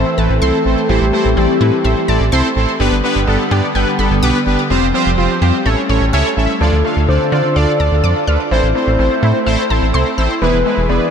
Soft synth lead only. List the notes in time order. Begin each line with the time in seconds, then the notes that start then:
Already playing: C5
0.18 A4
0.42 A4
0.66 A4
0.89 G4
1.37 G4
6.61 A4
7.08 C5
7.56 D5
8.27 D5
8.51 C5
8.75 C5
10.42 B4
10.89 D5